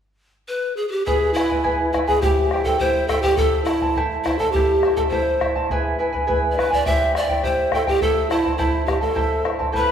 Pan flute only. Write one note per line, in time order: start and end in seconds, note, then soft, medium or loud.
0.48 0.76 B4 medium
0.77 0.88 G#4 medium
0.88 1.05 G4 medium
0.88 0.93 G#4 medium
1.06 1.35 G#4 medium
1.34 1.92 E4 medium
1.93 1.99 E4 medium
2.07 2.23 G#4 medium
2.22 2.66 G4 medium
2.64 2.81 A4 medium
2.79 3.10 C5 medium
3.08 3.22 A4 medium
3.22 3.39 G4 medium
3.37 3.64 A4 loud
3.65 3.97 E4 medium
4.24 4.40 E4 medium
4.39 4.53 A4 medium
4.52 4.96 G4 medium
4.97 5.03 A4 medium
5.10 5.51 C5 medium
6.52 6.60 D5 medium
6.58 6.75 B4 medium
6.73 6.88 D5 medium
6.86 7.15 E5 medium
7.16 7.46 D5 medium
7.45 7.73 C5 medium
7.75 7.87 A4 medium
7.88 8.04 G4 medium
8.02 8.30 A4 medium
8.30 8.57 E4 medium
8.58 8.85 E4 medium
8.86 9.00 G4 medium
9.01 9.49 A4 medium
9.76 9.92 B4 medium